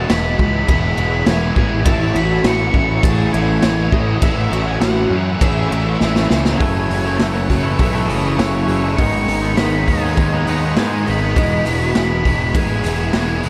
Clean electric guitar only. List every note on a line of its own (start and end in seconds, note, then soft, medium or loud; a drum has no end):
0.00 1.84 E3 medium
0.00 1.88 G#3 medium
0.00 1.86 B3 medium
1.85 6.58 A2 medium
1.85 6.59 E3 medium
1.85 6.60 C#4 medium
1.85 6.60 E4 medium
6.58 7.18 F#2 medium
6.58 7.20 C#3 medium
6.58 7.07 E3 medium
6.58 7.05 A3 loud
6.63 7.03 E4 medium
7.04 7.21 E3 medium
7.04 7.21 A3 medium
7.04 7.22 E4 medium
7.20 7.64 F#2 medium
7.20 7.48 C#3 medium
7.20 7.36 E3 medium
7.20 7.34 A3 medium
7.20 7.32 E4 loud
7.33 7.48 E3 medium
7.33 7.48 A3 medium
7.33 7.49 E4 medium
7.49 muted clean electric guitar stroke soft
7.63 7.95 E3 medium
7.63 7.93 A3 medium
7.63 7.91 E4 medium
7.92 8.06 E3 medium
7.92 8.08 A3 medium
7.92 8.09 E4 medium
8.07 8.36 C#3 medium
8.07 8.37 E3 medium
8.07 8.38 A3 medium
8.07 8.38 E4 medium
8.36 8.82 F#2 medium
8.36 8.66 C#3 medium
8.36 8.55 E3 medium
8.36 8.53 A3 medium
8.36 8.51 E4 medium
8.52 8.69 A3 medium
8.52 8.70 E4 medium
8.56 8.68 E3 medium
8.67 8.96 C#3 medium
8.67 8.85 E3 medium
8.67 8.83 A3 medium
8.71 8.81 E4 medium
8.82 8.98 E3 medium
8.82 8.97 A3 medium
8.82 8.96 E4 medium
8.98 9.57 G#2 medium
8.98 9.58 D#3 medium
8.98 9.45 G#3 medium
8.98 9.44 B3 medium
8.98 9.42 D#4 medium
9.42 9.60 G#3 medium
9.42 9.60 B3 medium
9.42 9.61 D#4 medium
9.58 10.02 G#2 medium
9.58 9.86 D#3 medium
9.58 9.74 G#3 medium
9.58 9.73 B3 medium
9.58 9.71 D#4 medium
9.71 9.88 G#3 medium
9.71 9.88 B3 medium
9.71 9.89 D#4 medium
9.88 muted clean electric guitar stroke soft
10.01 10.34 B3 medium
10.01 10.31 D#4 medium
10.05 10.36 G#3 medium
10.33 10.48 G#3 medium
10.33 10.49 B3 medium
10.33 10.49 D#4 medium
10.47 10.76 D#3 medium
10.47 10.78 G#3 medium
10.47 10.79 B3 medium
10.47 10.78 D#4 medium
10.76 11.21 G#2 medium
10.76 11.04 D#3 medium
10.76 10.93 G#3 loud
10.76 10.92 B3 loud
10.76 10.89 D#4 medium
10.90 11.06 G#3 medium
10.90 11.08 B3 medium
10.90 11.07 D#4 medium
11.05 11.34 D#3 medium
11.05 11.24 G#3 medium
11.05 11.22 B3 medium
11.05 11.20 D#4 medium
11.21 11.37 G#3 medium
11.21 11.37 B3 medium
11.21 11.34 D#4 medium
11.36 11.94 E3 medium
11.36 11.84 G#3 medium
11.36 11.82 B3 loud
11.82 11.96 G#3 medium
11.82 11.97 B3 medium
11.95 12.26 E3 medium
11.95 12.13 G#3 medium
11.95 12.11 B3 medium
12.12 12.26 G#3 medium
12.12 12.26 B3 medium
12.26 muted clean electric guitar stroke soft
12.42 12.73 G#3 medium
12.42 12.71 B3 medium
12.72 12.85 G#3 medium
12.72 12.85 B3 medium
12.83 13.11 E3 medium
12.83 13.13 G#3 medium
12.83 13.14 B3 medium
13.12 13.43 E3 medium
13.12 13.31 G#3 loud
13.12 13.29 B3 loud
13.30 13.43 G#3 medium
13.30 13.45 B3 medium
13.44 13.49 E3 medium
13.44 13.49 G#3 medium
13.44 13.49 B3 medium